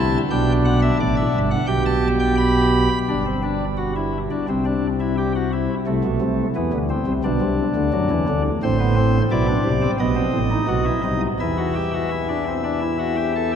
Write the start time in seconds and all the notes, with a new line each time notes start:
Already playing: C2 C3 E4 A5
0.30 B1 B2 D4 G5
0.65 F#5
0.82 E5
1.00 A1 A2 D5
1.16 E5
1.34 G1 G2
1.51 F#5
1.67 B1 B2 G4 G5
1.85 A5
2.20 G5
2.37 B5
3.09 G1 G2 D4
3.26 C4
3.43 D4
3.77 F#4
3.96 E4
4.31 D4
4.49 C2 C3 C4
4.65 D4
5.00 E4
5.18 G4
5.35 F#4
5.53 E4
5.87 C2 C3 A3
6.04 B1 B2
6.21 C2 C3
6.56 E2 E3 B3
6.73 D2 D3
6.90 C4
7.07 C2 C3
7.24 B1 B2 D4
7.41 C2 C3
7.75 D2 D3
7.93 F#2 F#3
8.10 E2 E3
8.28 D2 D3
8.63 A1 A2 C4 C5
8.80 B3
8.96 C4
9.31 B1 B2 E4 D5
9.47 D4
9.65 C2 C3
9.82 C4
10.00 B1 B2 B3 D#5
10.16 C4
10.33 A1 A2
10.51 D#4
10.68 B1 B2 F#4
10.85 E4
11.04 C2 C3 D#4
11.40 E2 E3 E4 E5
11.57 F#4
11.75 G4
11.93 F#4
12.11 E4
12.29 D4
12.47 C4
12.64 D4
12.82 E4
12.99 F#4
13.17 G4
13.36 A4